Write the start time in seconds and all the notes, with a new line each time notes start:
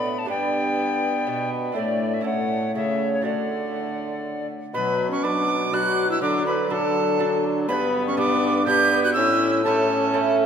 Already playing: A2 B3 D4 B4 B5
0.18 A5
0.25 G2 D4 G4 B4
0.29 G2 B3 D5 G5
1.27 B2
1.72 A2 D4 E4 A4 D5
1.77 A3 D5
2.14 E5
2.21 A2 C#4 E4 A4
2.25 A2 A3 C#5 F#5
2.75 C#3 A3 C#5 E5
3.14 C#5
3.21 D3 A3 D4 F#4 A4 D5 F#5
4.74 B2 F#3 B4 B5
5.10 C#4 C#6
5.23 F#3 D4 F#4 B4 D6
5.72 F#3 D4 F#4 B4 F#6
6.09 E4 E6
6.21 D3 F#3 D4 D6
6.46 B4 B5
6.70 F#3 D4 F#4 A4 A5
7.19 D4 F#4 A4
7.68 G2 B3 C#5 B5
7.73 B4
8.07 C#4 C#6
8.17 B3 D4 G4 D6
8.66 B3 D4 G4 G6
9.04 F#4 F#6
9.13 A2 C#4 E4 E6
9.64 A3 C#4 E4 A4 A5
10.14 A3 C#4 E4